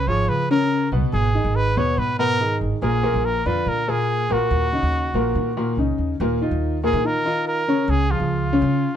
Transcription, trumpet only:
0.08 0.30 C#5 medium
0.29 0.50 B4 medium
0.51 0.90 A#4 loud
1.13 1.57 G#4 medium
1.56 1.79 B4 medium
1.78 2.00 C#5 medium
1.98 2.18 B4 medium
2.19 2.58 A#4 loud
2.83 3.26 G#4 medium
3.25 3.48 A#4 medium
3.46 3.70 B4 medium
3.68 3.91 A#4 medium
3.89 4.34 G#4 medium
4.32 5.79 F#4 medium
6.85 7.08 G#4 medium
7.06 7.47 A#4 loud
7.48 7.91 A#4 medium
7.90 8.12 G#4 loud
8.11 8.96 F4 medium

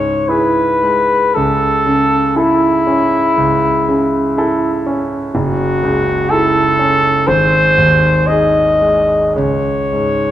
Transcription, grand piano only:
0.00 1.31 C#2 soft
0.00 0.61 G#2 soft
0.00 0.83 G#3 soft
0.00 0.29 E4 soft
0.00 0.29 G#4 soft
0.29 0.78 E4 soft
0.29 0.78 G#4 soft
0.83 1.35 G#3 soft
1.36 3.33 C#2 soft
1.86 2.66 C#3 soft
2.36 2.82 E4 soft
2.36 2.82 A4 soft
2.87 3.67 C#4 soft
3.37 5.30 C#2 soft
3.88 4.66 C#3 soft
4.38 4.81 E4 soft
4.38 4.82 A4 soft
4.86 5.34 C#4 soft
5.35 7.24 F#1 medium
5.83 6.60 C#2 soft
6.32 6.76 E4 soft
6.32 6.76 A4 soft
6.79 7.28 C#4 soft
7.28 9.32 G#1 soft
7.78 8.59 D#2 soft
8.29 8.77 D#4 soft
8.29 8.77 G#4 soft
8.81 9.36 G#3 soft
9.36 10.31 C#2 soft
9.93 10.31 G#2 soft

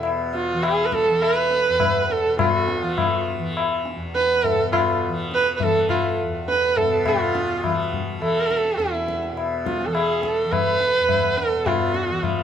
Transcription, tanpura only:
0.00 1.68 E2 medium
0.00 2.26 B2 medium
0.00 0.54 E3 medium
0.54 1.10 E3 medium
1.10 2.82 E3 medium
1.68 3.96 E2 medium
2.26 4.53 B2 medium
2.82 3.39 E3 medium
3.39 5.08 E3 medium
3.96 6.23 E2 medium
4.53 6.82 B2 medium
5.08 5.63 E3 medium
5.63 7.64 E3 medium
6.23 8.76 E2 medium
6.82 7.09 B2 medium
7.09 9.32 B2 medium
7.64 8.21 E3 medium
8.21 9.87 E3 medium
8.76 10.99 E2 medium
9.32 11.56 B2 medium
9.87 10.44 E3 medium
10.44 12.11 E3 medium
11.00 12.43 E2 medium
11.56 12.43 B2 medium
12.11 12.43 E3 medium

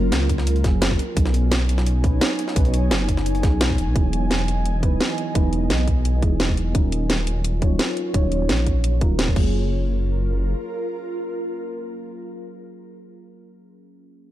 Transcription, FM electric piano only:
0.00 0.64 F#3 medium
0.00 0.64 A#3 medium
0.00 0.64 C#4 medium
0.00 0.65 F4 medium
0.00 0.65 G#4 medium
0.00 1.01 A#4 loud
0.64 0.98 F#3 medium
0.64 0.98 A#3 medium
0.64 0.98 C#4 medium
0.64 0.98 F4 medium
0.64 0.99 G#4 medium
1.15 2.01 F#3 medium
1.15 2.01 B3 medium
1.15 2.02 C#4 medium
1.15 2.02 D#4 medium
1.15 2.03 G#4 medium
2.02 2.53 F#3 medium
2.02 2.54 B3 medium
2.02 2.54 C#4 medium
2.02 2.55 D#4 medium
2.02 2.55 B4 medium
2.55 2.63 F#3 medium
2.55 2.63 B3 medium
2.55 2.64 C#4 medium
2.55 2.64 D#4 medium
2.55 2.64 B4 loud
3.42 3.77 F#3 medium
3.42 3.77 B3 medium
3.42 3.77 C#4 medium
3.42 3.77 D#4 medium
3.42 3.78 G#4 medium
3.94 4.80 F#3 medium
3.94 4.80 B3 medium
3.94 4.81 D#4 medium
3.94 4.81 E4 medium
3.94 4.82 G#4 medium
4.81 5.32 F#3 medium
4.81 5.33 B3 medium
4.81 5.33 D#4 medium
4.81 5.34 E4 medium
4.81 5.34 B4 medium
5.34 5.42 F#3 medium
5.34 5.43 B3 medium
5.34 5.43 D#4 medium
5.34 5.43 E4 medium
5.34 5.43 B4 loud
6.21 6.72 F#3 medium
6.21 6.72 B3 medium
6.21 6.73 D#4 medium
6.21 6.73 E4 medium
6.21 6.74 G#4 medium
6.73 7.59 F#3 medium
6.73 7.60 C#4 medium
6.73 7.60 D#4 medium
6.73 7.60 F4 medium
6.73 7.61 A#4 medium
7.60 8.11 F#3 medium
7.60 8.12 C#4 medium
7.60 8.12 D#4 medium
7.60 8.13 F4 medium
7.60 8.13 C#5 medium
8.14 8.21 F#3 medium
8.14 8.22 C#4 medium
8.14 8.22 D#4 medium
8.14 8.22 F4 medium
8.14 8.22 C#5 loud
9.00 9.33 F#3 medium
9.00 9.35 C#4 medium
9.00 9.36 D#4 medium
9.00 9.37 F4 medium
9.00 9.37 A#4 medium
9.34 13.21 F#3 medium
9.34 13.22 A#3 medium
9.34 13.24 C#4 medium
9.38 13.25 F4 medium
9.38 13.27 G#4 medium

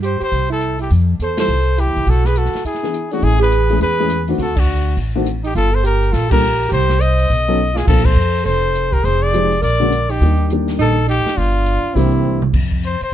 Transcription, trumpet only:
0.05 0.21 C5 medium
0.24 0.50 C5 medium
0.53 0.79 A4 medium
0.82 0.91 G4 medium
1.23 1.38 C5 medium
1.40 1.82 C5 medium
1.80 2.12 G4 medium
2.10 2.28 A4 medium
2.26 2.39 B4 medium
2.38 2.66 A4 medium
2.67 3.10 G#4 medium
3.14 3.26 F#4 medium
3.24 3.41 G#4 loud
3.43 3.79 B4 medium
3.83 4.26 B4 medium
4.42 4.61 A4 medium
4.60 4.99 F#4 medium
5.46 5.56 G4 medium
5.57 5.77 A4 loud
5.75 5.85 C5 medium
5.86 6.16 A#4 medium
6.14 6.31 A4 medium
6.32 6.69 A#4 loud
6.73 7.03 C5 loud
7.01 7.79 D#5 medium
7.78 7.87 G#4 medium
7.88 8.07 A4 medium
8.06 8.46 C5 loud
8.46 8.95 C5 loud
8.94 9.06 A#4 medium
9.05 9.25 C5 loud
9.23 9.63 D5 loud
9.63 10.12 D5 loud
10.11 10.53 G4 medium
10.81 11.07 A4 loud
11.10 11.39 G4 loud
11.38 11.97 F4 loud
11.96 12.43 E4 medium
12.85 13.01 C5 medium
13.04 13.13 C5 medium

